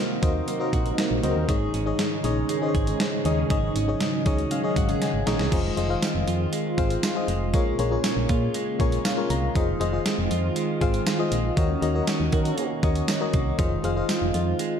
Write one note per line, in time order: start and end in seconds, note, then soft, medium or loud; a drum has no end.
0.00 0.19 C3 medium
0.00 1.47 C3 medium
0.00 1.48 D#3 medium
0.00 0.47 A#3 medium
0.00 1.47 A#3 medium
0.00 0.22 C4 medium
0.00 5.48 D#4 medium
0.00 0.22 F#4 medium
0.00 0.72 F#4 medium
0.00 0.22 A#4 medium
0.00 0.23 C5 medium
0.00 0.23 D#5 medium
0.00 0.15 F5 medium
0.22 0.42 D#2 medium
0.22 1.22 C4 medium
0.22 0.53 F#4 medium
0.22 0.53 A#4 medium
0.22 0.53 C5 medium
0.22 0.53 D#5 medium
0.22 kick loud
0.22 closed hi-hat medium
0.48 0.59 F#3 medium
0.48 0.97 A#3 medium
0.48 0.59 D#4 medium
0.48 0.59 A#4 medium
0.48 closed hi-hat medium
0.60 0.71 F#3 medium
0.60 0.71 D#4 loud
0.60 1.11 F#4 medium
0.60 1.11 A#4 medium
0.60 0.71 A#4 loud
0.60 1.11 C5 medium
0.60 1.11 D#5 medium
0.73 0.92 A#1 medium
0.73 1.49 F#4 medium
0.73 kick medium
0.73 closed hi-hat medium
0.86 0.96 F#3 medium
0.86 0.96 D#4 medium
0.86 0.96 A#4 medium
0.86 closed hi-hat soft
0.98 1.54 A#3 medium
0.98 snare loud
0.98 closed hi-hat medium
1.11 1.20 A#1 medium
1.23 1.33 C#2 medium
1.23 1.45 F#3 medium
1.23 1.54 C4 medium
1.23 1.45 D#4 loud
1.23 1.43 F#4 medium
1.23 1.43 A#4 medium
1.23 1.45 A#4 loud
1.23 1.44 C5 medium
1.23 1.44 D#5 medium
1.23 closed hi-hat medium
1.36 1.46 D#2 loud
1.48 1.68 G#1 loud
1.48 2.20 G#2 medium
1.48 5.48 C#3 medium
1.48 3.50 D#3 medium
1.48 3.48 G#3 medium
1.48 1.79 D#4 medium
1.48 1.79 G#4 medium
1.48 2.74 G#4 medium
1.48 1.79 C#5 medium
1.48 1.79 D#5 medium
1.48 kick loud
1.48 closed hi-hat medium
1.74 1.93 G#1 loud
1.74 2.23 C#4 medium
1.74 closed hi-hat medium
1.86 2.17 D#4 medium
1.86 2.17 G#4 medium
1.86 2.17 C#5 medium
1.86 2.17 D#5 medium
1.99 2.49 G#3 medium
1.99 snare loud
1.99 closed hi-hat medium
2.24 2.43 A#1 loud
2.24 3.24 C#4 medium
2.24 2.54 D#4 medium
2.24 2.55 G#4 medium
2.24 2.55 C#5 medium
2.24 2.55 D#5 loud
2.24 closed hi-hat medium
2.49 2.60 D#3 medium
2.49 3.00 G#3 medium
2.49 2.60 C#4 medium
2.49 2.60 G#4 medium
2.49 closed hi-hat medium
2.62 2.73 D#3 medium
2.62 2.73 C#4 medium
2.62 3.12 D#4 medium
2.62 3.13 G#4 medium
2.62 2.73 G#4 loud
2.62 2.68 C5 medium
2.62 3.13 D#5 medium
2.68 3.16 C#5 medium
2.75 2.94 G#1 medium
2.75 3.50 G#4 medium
2.75 kick medium
2.75 closed hi-hat medium
2.87 2.98 D#3 medium
2.87 2.98 C#4 medium
2.87 2.98 G#4 medium
2.87 closed hi-hat soft
3.00 4.00 G#3 medium
3.00 snare loud
3.00 closed hi-hat medium
3.25 3.44 D#2 medium
3.25 3.47 D#3 medium
3.25 3.74 C#4 medium
3.25 3.47 C#4 loud
3.25 3.45 D#4 medium
3.25 3.45 G#4 medium
3.25 3.47 G#4 loud
3.25 3.45 C#5 medium
3.25 3.46 D#5 medium
3.25 closed hi-hat medium
3.50 3.69 G#1 loud
3.50 4.22 G#2 medium
3.50 5.51 D#3 medium
3.50 5.50 F#3 medium
3.50 3.80 D#4 medium
3.50 3.80 G#4 medium
3.50 4.76 G#4 medium
3.50 3.81 C#5 medium
3.50 3.81 D#5 loud
3.50 kick loud
3.50 closed hi-hat medium
3.76 3.95 G#1 loud
3.76 4.25 C#4 medium
3.76 closed hi-hat medium
3.88 4.18 D#4 medium
3.88 4.18 G#4 medium
3.88 4.19 C#5 medium
3.88 4.19 D#5 medium
4.01 4.51 G#3 medium
4.01 snare loud
4.01 closed hi-hat medium
4.26 4.45 C#2 medium
4.26 5.26 C#4 medium
4.26 4.56 D#4 medium
4.26 4.56 G#4 medium
4.26 4.57 C#5 medium
4.26 4.57 D#5 loud
4.26 kick loud
4.26 closed hi-hat medium
4.39 closed hi-hat soft
4.51 4.62 D#3 medium
4.51 5.01 G#3 medium
4.51 4.62 C#4 medium
4.51 4.62 G#4 medium
4.51 4.75 F5 medium
4.51 closed hi-hat medium
4.63 4.75 D#3 medium
4.63 4.75 C#4 medium
4.63 5.14 D#4 medium
4.63 5.14 G#4 medium
4.63 4.75 G#4 loud
4.63 5.14 C#5 medium
4.63 5.15 D#5 medium
4.76 4.95 G#1 medium
4.76 4.89 F#4 medium
4.76 5.00 F#5 medium
4.76 kick medium
4.76 closed hi-hat medium
4.89 5.00 D#3 medium
4.89 5.00 C#4 medium
4.89 5.57 G#4 medium
4.89 5.00 G#4 medium
4.89 closed hi-hat soft
5.01 5.77 G#3 medium
5.01 5.25 G#5 medium
5.01 snare medium
5.01 closed hi-hat medium
5.14 5.23 G#1 medium
5.26 5.36 A#1 medium
5.26 5.48 D#3 medium
5.26 5.57 C#4 medium
5.26 5.48 C#4 medium
5.26 5.47 D#4 medium
5.26 5.47 G#4 medium
5.26 5.48 G#4 loud
5.26 5.47 C#5 medium
5.26 5.47 D#5 medium
5.26 5.50 A#5 medium
5.26 snare medium
5.26 closed hi-hat medium
5.39 5.49 C2 medium
5.39 snare medium
5.51 5.71 F1 loud
5.51 7.54 D#3 medium
5.51 7.52 D#3 medium
5.51 7.52 G#3 medium
5.51 5.72 F4 medium
5.51 7.52 F4 medium
5.51 5.72 G#4 medium
5.51 5.72 C5 medium
5.51 5.73 D#5 medium
5.51 kick loud
5.51 closed hi-hat medium
5.51 crash loud
5.77 5.96 F1 loud
5.77 6.52 G#3 medium
5.77 5.87 F4 medium
5.77 5.87 G#4 medium
5.77 5.88 C5 medium
5.77 5.88 D#5 medium
5.77 closed hi-hat medium
5.89 6.60 F4 medium
5.89 6.61 G#4 medium
5.89 6.61 C5 medium
5.89 6.61 F5 medium
6.02 6.77 C4 medium
6.02 snare loud
6.02 closed hi-hat medium
6.02 tambourine medium
6.15 6.24 F1 loud
6.27 6.46 F2 medium
6.27 7.03 F4 medium
6.27 closed hi-hat medium
6.53 7.28 G#3 medium
6.53 closed hi-hat medium
6.78 6.97 G#1 medium
6.78 7.59 C4 medium
6.78 7.08 F4 medium
6.78 7.08 G#4 medium
6.78 7.09 C5 medium
6.78 7.09 F5 medium
6.78 kick medium
6.78 closed hi-hat medium
6.90 closed hi-hat medium
7.03 8.29 F4 medium
7.03 snare loud
7.03 closed hi-hat medium
7.03 tambourine medium
7.15 7.46 F4 medium
7.15 7.46 G#4 medium
7.15 7.46 C5 medium
7.15 7.47 D#5 medium
7.28 7.55 F1 medium
7.28 7.53 G#3 medium
7.28 closed hi-hat medium
7.53 7.73 A#1 loud
7.53 8.25 A#2 medium
7.53 9.53 C#3 medium
7.53 7.79 G#3 medium
7.53 9.53 A#3 medium
7.53 7.74 F4 medium
7.53 7.74 G#4 medium
7.53 9.53 G#4 medium
7.53 7.74 A#4 medium
7.53 7.74 C#5 medium
7.53 kick loud
7.53 closed hi-hat medium
7.78 7.98 A#1 loud
7.78 8.54 G#3 medium
7.78 7.89 F4 medium
7.78 7.89 G#4 medium
7.78 7.89 A#4 medium
7.78 7.89 C#5 medium
7.78 closed hi-hat medium
7.91 8.62 F4 medium
7.91 8.62 G#4 medium
7.91 8.62 A#4 medium
7.91 8.63 C#5 medium
8.04 8.79 C#4 medium
8.04 snare loud
8.04 closed hi-hat medium
8.04 tambourine medium
8.17 8.26 A#1 loud
8.29 8.48 A#2 loud
8.29 9.04 F4 medium
8.29 kick loud
8.29 closed hi-hat medium
8.54 9.30 G#3 medium
8.54 closed hi-hat medium
8.79 8.99 A#1 medium
8.79 9.60 C#4 medium
8.79 9.10 F4 medium
8.79 9.10 G#4 medium
8.79 9.10 A#4 medium
8.79 9.10 C#5 loud
8.79 kick medium
8.79 closed hi-hat medium
8.92 closed hi-hat medium
9.05 9.60 F4 medium
9.05 9.29 F5 medium
9.05 snare loud
9.05 closed hi-hat loud
9.05 tambourine medium
9.17 9.48 F4 medium
9.17 9.48 G#4 medium
9.17 9.48 A#4 medium
9.17 9.48 C#5 medium
9.30 9.49 C2 medium
9.30 9.60 G#3 medium
9.30 9.54 A#5 medium
9.30 closed hi-hat medium
9.55 9.74 F1 loud
9.55 11.57 D#3 medium
9.55 14.80 D#3 medium
9.55 11.55 G#3 medium
9.55 9.75 F4 medium
9.55 11.55 F4 medium
9.55 9.76 G#4 medium
9.55 9.76 C5 medium
9.55 9.76 D#5 medium
9.55 kick loud
9.55 closed hi-hat medium
9.80 9.99 F1 loud
9.80 10.55 G#3 medium
9.80 9.90 F4 medium
9.80 9.91 G#4 medium
9.80 9.91 C5 medium
9.80 9.91 D#5 medium
9.80 closed hi-hat medium
9.93 10.64 F4 medium
9.93 10.64 G#4 medium
9.93 10.64 C5 medium
9.93 10.64 D#5 medium
10.06 10.80 C4 medium
10.06 snare loud
10.06 closed hi-hat medium
10.06 tambourine medium
10.18 10.28 F1 loud
10.31 10.50 F2 loud
10.31 11.05 F4 medium
10.31 closed hi-hat medium
10.56 11.31 G#3 medium
10.56 closed hi-hat medium
10.81 11.00 G#1 medium
10.81 11.62 C4 medium
10.81 11.11 F4 medium
10.81 11.12 G#4 medium
10.81 11.12 C5 medium
10.81 11.12 F5 medium
10.81 kick medium
10.81 closed hi-hat medium
10.94 closed hi-hat medium
11.06 11.62 F4 medium
11.06 snare loud
11.06 closed hi-hat medium
11.06 tambourine medium
11.19 11.49 F4 medium
11.19 11.50 G#4 medium
11.19 11.50 C5 medium
11.19 11.50 D#5 medium
11.32 11.51 A#1 medium
11.32 11.62 G#3 medium
11.32 closed hi-hat medium
11.56 11.76 D#2 loud
11.56 13.58 D#3 medium
11.56 12.29 D#3 medium
11.56 13.57 C#4 medium
11.56 11.77 F#4 medium
11.56 13.57 F#4 medium
11.56 11.77 A#4 medium
11.56 11.77 C#5 medium
11.56 11.78 D#5 medium
11.56 kick loud
11.56 closed hi-hat medium
11.82 12.01 D#2 loud
11.82 12.57 A#3 medium
11.82 11.92 F#4 medium
11.82 11.92 A#4 medium
11.82 11.93 C#5 medium
11.82 11.93 D#5 medium
11.82 closed hi-hat medium
11.95 12.06 F#3 medium
11.95 12.06 D#4 medium
11.95 12.66 F#4 medium
11.95 12.66 A#4 medium
11.95 12.06 A#4 loud
11.95 12.66 C#5 medium
11.95 12.66 D#5 medium
12.07 12.82 C#4 medium
12.07 snare loud
12.07 closed hi-hat medium
12.07 tambourine medium
12.20 12.30 D#2 loud
12.32 12.52 D#3 loud
12.32 12.65 F#3 loud
12.32 12.65 D#4 medium
12.32 13.07 F#4 medium
12.32 12.65 A#4 loud
12.32 kick loud
12.32 closed hi-hat medium
12.45 closed hi-hat medium
12.58 13.32 A#3 medium
12.58 closed hi-hat medium
12.83 13.02 D#2 medium
12.83 13.64 C#4 medium
12.83 13.13 F#4 medium
12.83 13.13 A#4 medium
12.83 13.14 C#5 medium
12.83 13.14 D#5 medium
12.83 kick medium
12.83 closed hi-hat medium
12.95 closed hi-hat soft
13.08 13.64 F#4 medium
13.08 snare loud
13.08 closed hi-hat medium
13.08 tambourine medium
13.21 13.51 F#4 medium
13.21 13.51 A#4 medium
13.21 13.52 C#5 medium
13.21 13.52 D#5 medium
13.33 13.53 C2 medium
13.33 13.64 A#3 medium
13.33 kick loud
13.33 closed hi-hat medium
13.58 13.78 F1 loud
13.58 14.80 D#3 medium
13.58 14.80 G#3 medium
13.58 13.79 F4 medium
13.58 14.80 F4 medium
13.58 13.79 G#4 medium
13.58 13.79 C5 medium
13.58 13.79 D#5 medium
13.58 kick loud
13.58 closed hi-hat medium
13.83 14.03 F1 loud
13.83 14.59 G#3 medium
13.83 13.94 F4 medium
13.83 13.94 G#4 medium
13.83 13.94 C5 medium
13.83 13.94 F5 medium
13.83 closed hi-hat medium
13.96 14.67 F4 medium
13.96 14.67 G#4 medium
13.96 14.68 C5 medium
13.96 14.68 D#5 medium
14.09 14.80 C4 medium
14.09 snare loud
14.09 closed hi-hat medium
14.09 tambourine medium
14.22 14.31 F1 medium
14.34 14.53 F2 loud
14.34 14.80 F4 medium
14.34 closed hi-hat medium
14.59 14.80 G#3 medium
14.59 closed hi-hat medium